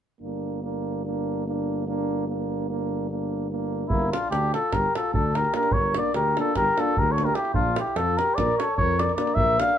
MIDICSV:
0, 0, Header, 1, 7, 480
1, 0, Start_track
1, 0, Tempo, 406504
1, 257, Time_signature, 9, 3, 24, 8
1, 11552, End_track
2, 0, Start_track
2, 0, Title_t, "Cornet"
2, 0, Program_c, 0, 56
2, 4589, Note_on_c, 0, 64, 74
2, 4841, Note_off_c, 0, 64, 0
2, 4864, Note_on_c, 0, 65, 72
2, 5073, Note_off_c, 0, 65, 0
2, 5085, Note_on_c, 0, 67, 80
2, 5336, Note_off_c, 0, 67, 0
2, 5363, Note_on_c, 0, 69, 74
2, 5589, Note_on_c, 0, 70, 79
2, 5607, Note_off_c, 0, 69, 0
2, 5844, Note_off_c, 0, 70, 0
2, 5851, Note_on_c, 0, 69, 74
2, 6058, Note_off_c, 0, 69, 0
2, 6068, Note_on_c, 0, 69, 77
2, 6323, Note_on_c, 0, 70, 75
2, 6341, Note_off_c, 0, 69, 0
2, 6539, Note_off_c, 0, 70, 0
2, 6559, Note_on_c, 0, 70, 77
2, 6762, Note_on_c, 0, 73, 82
2, 6780, Note_off_c, 0, 70, 0
2, 7026, Note_off_c, 0, 73, 0
2, 7060, Note_on_c, 0, 74, 76
2, 7251, Note_off_c, 0, 74, 0
2, 7271, Note_on_c, 0, 70, 77
2, 7508, Note_off_c, 0, 70, 0
2, 7553, Note_on_c, 0, 69, 80
2, 7743, Note_off_c, 0, 69, 0
2, 7753, Note_on_c, 0, 70, 88
2, 8024, Note_on_c, 0, 69, 83
2, 8041, Note_off_c, 0, 70, 0
2, 8249, Note_on_c, 0, 70, 84
2, 8266, Note_off_c, 0, 69, 0
2, 8400, Note_on_c, 0, 73, 72
2, 8417, Note_off_c, 0, 70, 0
2, 8557, Note_on_c, 0, 70, 81
2, 8575, Note_off_c, 0, 73, 0
2, 8681, Note_on_c, 0, 67, 83
2, 8699, Note_off_c, 0, 70, 0
2, 8904, Note_off_c, 0, 67, 0
2, 8909, Note_on_c, 0, 65, 86
2, 9157, Note_off_c, 0, 65, 0
2, 9206, Note_on_c, 0, 67, 76
2, 9404, Note_on_c, 0, 69, 91
2, 9421, Note_off_c, 0, 67, 0
2, 9653, Note_on_c, 0, 70, 79
2, 9671, Note_off_c, 0, 69, 0
2, 9858, Note_on_c, 0, 74, 90
2, 9876, Note_off_c, 0, 70, 0
2, 10119, Note_off_c, 0, 74, 0
2, 10126, Note_on_c, 0, 73, 78
2, 10345, Note_off_c, 0, 73, 0
2, 10352, Note_on_c, 0, 73, 100
2, 10617, Note_on_c, 0, 74, 85
2, 10635, Note_off_c, 0, 73, 0
2, 10801, Note_off_c, 0, 74, 0
2, 10808, Note_on_c, 0, 74, 82
2, 11036, Note_on_c, 0, 76, 96
2, 11053, Note_off_c, 0, 74, 0
2, 11334, Note_on_c, 0, 77, 87
2, 11352, Note_off_c, 0, 76, 0
2, 11552, Note_off_c, 0, 77, 0
2, 11552, End_track
3, 0, Start_track
3, 0, Title_t, "Flugelhorn"
3, 0, Program_c, 1, 56
3, 4619, Note_on_c, 1, 58, 78
3, 4858, Note_off_c, 1, 58, 0
3, 4880, Note_on_c, 1, 62, 55
3, 5078, Note_off_c, 1, 62, 0
3, 5085, Note_on_c, 1, 62, 75
3, 5336, Note_off_c, 1, 62, 0
3, 5354, Note_on_c, 1, 65, 64
3, 5597, Note_on_c, 1, 67, 68
3, 5615, Note_off_c, 1, 65, 0
3, 5842, Note_off_c, 1, 67, 0
3, 5849, Note_on_c, 1, 65, 67
3, 6057, Note_off_c, 1, 65, 0
3, 6079, Note_on_c, 1, 62, 61
3, 6344, Note_on_c, 1, 67, 56
3, 6362, Note_off_c, 1, 62, 0
3, 6550, Note_off_c, 1, 67, 0
3, 6562, Note_on_c, 1, 67, 64
3, 6766, Note_on_c, 1, 70, 78
3, 6783, Note_off_c, 1, 67, 0
3, 7028, Note_off_c, 1, 70, 0
3, 7037, Note_on_c, 1, 70, 59
3, 7235, Note_off_c, 1, 70, 0
3, 7243, Note_on_c, 1, 67, 78
3, 7493, Note_off_c, 1, 67, 0
3, 7527, Note_on_c, 1, 65, 68
3, 7716, Note_off_c, 1, 65, 0
3, 7723, Note_on_c, 1, 67, 86
3, 7998, Note_on_c, 1, 65, 76
3, 8015, Note_off_c, 1, 67, 0
3, 8228, Note_on_c, 1, 67, 67
3, 8246, Note_off_c, 1, 65, 0
3, 8394, Note_on_c, 1, 69, 62
3, 8411, Note_off_c, 1, 67, 0
3, 8547, Note_on_c, 1, 67, 71
3, 8565, Note_off_c, 1, 69, 0
3, 8707, Note_on_c, 1, 64, 59
3, 8725, Note_off_c, 1, 67, 0
3, 8893, Note_off_c, 1, 64, 0
3, 8901, Note_on_c, 1, 62, 84
3, 9153, Note_off_c, 1, 62, 0
3, 9172, Note_on_c, 1, 64, 61
3, 9402, Note_on_c, 1, 65, 73
3, 9420, Note_off_c, 1, 64, 0
3, 9673, Note_on_c, 1, 67, 69
3, 9691, Note_off_c, 1, 65, 0
3, 9889, Note_on_c, 1, 70, 82
3, 9907, Note_off_c, 1, 67, 0
3, 10156, Note_off_c, 1, 70, 0
3, 10163, Note_on_c, 1, 69, 80
3, 10367, Note_off_c, 1, 69, 0
3, 10390, Note_on_c, 1, 70, 64
3, 10611, Note_off_c, 1, 70, 0
3, 10611, Note_on_c, 1, 70, 69
3, 10819, Note_off_c, 1, 70, 0
3, 10826, Note_on_c, 1, 70, 69
3, 11045, Note_off_c, 1, 70, 0
3, 11045, Note_on_c, 1, 70, 83
3, 11314, Note_on_c, 1, 74, 71
3, 11332, Note_off_c, 1, 70, 0
3, 11552, Note_off_c, 1, 74, 0
3, 11552, End_track
4, 0, Start_track
4, 0, Title_t, "Euphonium"
4, 0, Program_c, 2, 58
4, 259, Note_on_c, 2, 62, 46
4, 742, Note_off_c, 2, 62, 0
4, 754, Note_on_c, 2, 62, 47
4, 1229, Note_off_c, 2, 62, 0
4, 1237, Note_on_c, 2, 62, 54
4, 1726, Note_off_c, 2, 62, 0
4, 1735, Note_on_c, 2, 62, 49
4, 2196, Note_off_c, 2, 62, 0
4, 2207, Note_on_c, 2, 62, 58
4, 2686, Note_off_c, 2, 62, 0
4, 2691, Note_on_c, 2, 62, 49
4, 3172, Note_off_c, 2, 62, 0
4, 3179, Note_on_c, 2, 62, 55
4, 3669, Note_off_c, 2, 62, 0
4, 3675, Note_on_c, 2, 62, 47
4, 4144, Note_off_c, 2, 62, 0
4, 4152, Note_on_c, 2, 62, 52
4, 4583, Note_off_c, 2, 62, 0
4, 6543, Note_on_c, 2, 62, 66
4, 6736, Note_off_c, 2, 62, 0
4, 7022, Note_on_c, 2, 62, 58
4, 7219, Note_off_c, 2, 62, 0
4, 7508, Note_on_c, 2, 62, 63
4, 7705, Note_off_c, 2, 62, 0
4, 7992, Note_on_c, 2, 62, 65
4, 8182, Note_off_c, 2, 62, 0
4, 8461, Note_on_c, 2, 62, 62
4, 8638, Note_off_c, 2, 62, 0
4, 10822, Note_on_c, 2, 62, 58
4, 11019, Note_off_c, 2, 62, 0
4, 11320, Note_on_c, 2, 62, 48
4, 11517, Note_off_c, 2, 62, 0
4, 11552, End_track
5, 0, Start_track
5, 0, Title_t, "Trombone"
5, 0, Program_c, 3, 57
5, 243, Note_on_c, 3, 58, 37
5, 734, Note_off_c, 3, 58, 0
5, 750, Note_on_c, 3, 58, 47
5, 1235, Note_off_c, 3, 58, 0
5, 1245, Note_on_c, 3, 58, 51
5, 1730, Note_off_c, 3, 58, 0
5, 1743, Note_on_c, 3, 58, 50
5, 2200, Note_off_c, 3, 58, 0
5, 2213, Note_on_c, 3, 58, 57
5, 2682, Note_off_c, 3, 58, 0
5, 2689, Note_on_c, 3, 58, 44
5, 3177, Note_off_c, 3, 58, 0
5, 3189, Note_on_c, 3, 58, 51
5, 3659, Note_off_c, 3, 58, 0
5, 3667, Note_on_c, 3, 58, 45
5, 4133, Note_off_c, 3, 58, 0
5, 4140, Note_on_c, 3, 58, 50
5, 4577, Note_off_c, 3, 58, 0
5, 6529, Note_on_c, 3, 58, 61
5, 6725, Note_off_c, 3, 58, 0
5, 7019, Note_on_c, 3, 58, 58
5, 7217, Note_off_c, 3, 58, 0
5, 7519, Note_on_c, 3, 58, 53
5, 7714, Note_off_c, 3, 58, 0
5, 8007, Note_on_c, 3, 58, 50
5, 8195, Note_off_c, 3, 58, 0
5, 8470, Note_on_c, 3, 58, 55
5, 8645, Note_off_c, 3, 58, 0
5, 10827, Note_on_c, 3, 58, 55
5, 11023, Note_off_c, 3, 58, 0
5, 11314, Note_on_c, 3, 58, 48
5, 11512, Note_off_c, 3, 58, 0
5, 11552, End_track
6, 0, Start_track
6, 0, Title_t, "Tuba"
6, 0, Program_c, 4, 58
6, 252, Note_on_c, 4, 31, 62
6, 4545, Note_off_c, 4, 31, 0
6, 4579, Note_on_c, 4, 31, 78
6, 4855, Note_off_c, 4, 31, 0
6, 5080, Note_on_c, 4, 38, 75
6, 5353, Note_off_c, 4, 38, 0
6, 5579, Note_on_c, 4, 31, 80
6, 5727, Note_off_c, 4, 31, 0
6, 6061, Note_on_c, 4, 38, 82
6, 6439, Note_off_c, 4, 38, 0
6, 6760, Note_on_c, 4, 31, 71
6, 7029, Note_off_c, 4, 31, 0
6, 7248, Note_on_c, 4, 38, 72
6, 7518, Note_off_c, 4, 38, 0
6, 7742, Note_on_c, 4, 31, 81
6, 7888, Note_off_c, 4, 31, 0
6, 8237, Note_on_c, 4, 38, 85
6, 8609, Note_off_c, 4, 38, 0
6, 8902, Note_on_c, 4, 34, 81
6, 9174, Note_off_c, 4, 34, 0
6, 9390, Note_on_c, 4, 41, 75
6, 9662, Note_off_c, 4, 41, 0
6, 9887, Note_on_c, 4, 34, 85
6, 10034, Note_off_c, 4, 34, 0
6, 10371, Note_on_c, 4, 41, 86
6, 10747, Note_off_c, 4, 41, 0
6, 11052, Note_on_c, 4, 34, 84
6, 11322, Note_off_c, 4, 34, 0
6, 11552, End_track
7, 0, Start_track
7, 0, Title_t, "Davul"
7, 4607, Note_on_c, 9, 43, 75
7, 4725, Note_off_c, 9, 43, 0
7, 4882, Note_on_c, 9, 37, 69
7, 5000, Note_off_c, 9, 37, 0
7, 5106, Note_on_c, 9, 37, 60
7, 5224, Note_off_c, 9, 37, 0
7, 5360, Note_on_c, 9, 37, 52
7, 5478, Note_off_c, 9, 37, 0
7, 5580, Note_on_c, 9, 37, 59
7, 5580, Note_on_c, 9, 43, 55
7, 5698, Note_off_c, 9, 37, 0
7, 5698, Note_off_c, 9, 43, 0
7, 5850, Note_on_c, 9, 37, 58
7, 5968, Note_off_c, 9, 37, 0
7, 6070, Note_on_c, 9, 43, 75
7, 6188, Note_off_c, 9, 43, 0
7, 6320, Note_on_c, 9, 37, 56
7, 6433, Note_off_c, 9, 37, 0
7, 6433, Note_on_c, 9, 37, 22
7, 6538, Note_off_c, 9, 37, 0
7, 6538, Note_on_c, 9, 37, 61
7, 6647, Note_off_c, 9, 37, 0
7, 6647, Note_on_c, 9, 37, 27
7, 6748, Note_on_c, 9, 43, 83
7, 6765, Note_off_c, 9, 37, 0
7, 6866, Note_off_c, 9, 43, 0
7, 7020, Note_on_c, 9, 37, 64
7, 7138, Note_off_c, 9, 37, 0
7, 7255, Note_on_c, 9, 37, 59
7, 7373, Note_off_c, 9, 37, 0
7, 7521, Note_on_c, 9, 37, 58
7, 7639, Note_off_c, 9, 37, 0
7, 7740, Note_on_c, 9, 37, 55
7, 7740, Note_on_c, 9, 43, 47
7, 7858, Note_off_c, 9, 37, 0
7, 7858, Note_off_c, 9, 43, 0
7, 8001, Note_on_c, 9, 37, 57
7, 8119, Note_off_c, 9, 37, 0
7, 8230, Note_on_c, 9, 43, 76
7, 8348, Note_off_c, 9, 43, 0
7, 8480, Note_on_c, 9, 37, 52
7, 8579, Note_off_c, 9, 37, 0
7, 8579, Note_on_c, 9, 37, 21
7, 8683, Note_off_c, 9, 37, 0
7, 8683, Note_on_c, 9, 37, 58
7, 8798, Note_off_c, 9, 37, 0
7, 8798, Note_on_c, 9, 37, 24
7, 8906, Note_on_c, 9, 43, 84
7, 8916, Note_off_c, 9, 37, 0
7, 9024, Note_off_c, 9, 43, 0
7, 9167, Note_on_c, 9, 37, 71
7, 9285, Note_off_c, 9, 37, 0
7, 9402, Note_on_c, 9, 37, 67
7, 9520, Note_off_c, 9, 37, 0
7, 9666, Note_on_c, 9, 37, 57
7, 9784, Note_off_c, 9, 37, 0
7, 9894, Note_on_c, 9, 37, 63
7, 9894, Note_on_c, 9, 43, 51
7, 10012, Note_off_c, 9, 37, 0
7, 10012, Note_off_c, 9, 43, 0
7, 10152, Note_on_c, 9, 37, 63
7, 10270, Note_off_c, 9, 37, 0
7, 10368, Note_on_c, 9, 43, 76
7, 10486, Note_off_c, 9, 43, 0
7, 10621, Note_on_c, 9, 37, 61
7, 10737, Note_off_c, 9, 37, 0
7, 10737, Note_on_c, 9, 37, 25
7, 10839, Note_off_c, 9, 37, 0
7, 10839, Note_on_c, 9, 37, 61
7, 10950, Note_off_c, 9, 37, 0
7, 10950, Note_on_c, 9, 37, 28
7, 11061, Note_on_c, 9, 43, 89
7, 11068, Note_off_c, 9, 37, 0
7, 11179, Note_off_c, 9, 43, 0
7, 11331, Note_on_c, 9, 37, 76
7, 11444, Note_off_c, 9, 37, 0
7, 11444, Note_on_c, 9, 37, 26
7, 11552, Note_off_c, 9, 37, 0
7, 11552, End_track
0, 0, End_of_file